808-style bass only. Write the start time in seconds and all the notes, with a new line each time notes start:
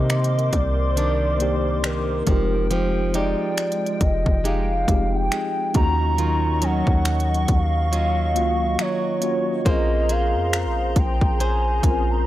Already playing: C3
0.53 C2
2.27 F1
4.01 F1
4.26 F1
4.88 F1
5.75 D#2
6.87 D#2
7.49 D#2
8.36 C#2
9.66 A#1
10.35 F2
10.66 A#1
10.96 A#1
11.21 A#1
11.83 A#1